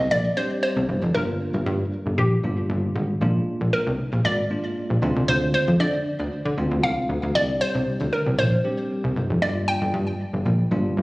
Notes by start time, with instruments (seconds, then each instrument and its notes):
Already playing: synth pluck D#5
0.11 analog synth bass A#1, synth pluck D5
0.37 tine electric piano G3 C4 D4 G4, synth pluck C5
0.63 synth pluck C5
0.76 analog synth bass C2
0.89 analog synth bass G1
1.02 analog synth bass F1
1.14 analog synth bass G1, tine electric piano G3 A#3 D4 F4, synth pluck A#4
1.54 analog synth bass G1
1.66 analog synth bass G2
2.06 analog synth bass G1
2.18 analog synth bass A#1, synth pluck G4
2.43 analog synth bass G1, tine electric piano G3 A#3 D4 F4
2.70 analog synth bass G1
2.96 analog synth bass G#1
3.21 analog synth bass A#1, tine electric piano G#3 A#3 D4 F4
3.61 analog synth bass A#1
3.73 synth pluck A#4
3.87 analog synth bass C2
4.13 analog synth bass A#1
4.25 analog synth bass G#1, synth pluck D5
4.50 tine electric piano G#3 A#3 D4 F4
4.90 analog synth bass A#1
5.02 analog synth bass D2, tine electric piano G#3 C4 D4 F4
5.16 analog synth bass C2
5.28 analog synth bass D2, synth pluck C5
5.54 synth pluck C5
5.68 analog synth bass F2
5.80 analog synth bass D3, synth pluck D5
6.20 analog synth bass D2
6.45 analog synth bass D3
6.57 analog synth bass D2, tine electric piano G#3 C4 D4 F4
6.71 analog synth bass D2
6.83 analog synth bass C2, synth pluck F5
7.09 analog synth bass D2
7.23 analog synth bass D2
7.35 analog synth bass C2, tine electric piano G3 C4 D4 G4, synth pluck D5
7.61 synth pluck C5
7.75 analog synth bass C2
8.01 analog synth bass D2
8.13 synth pluck A#4
8.26 analog synth bass C2
8.39 analog synth bass A#1, synth pluck C5
8.64 tine electric piano G3 C4 D4 G4
9.04 analog synth bass C2
9.16 analog synth bass G1
9.30 analog synth bass F1
9.42 analog synth bass G1, tine electric piano G3 A#3 D4 F4, synth pluck D5
9.68 synth pluck G5
9.82 analog synth bass G1
9.94 analog synth bass G2
10.33 analog synth bass G1
10.45 analog synth bass A#1
10.71 analog synth bass G1, tine electric piano G3 A#3 D4 F4
10.97 analog synth bass G1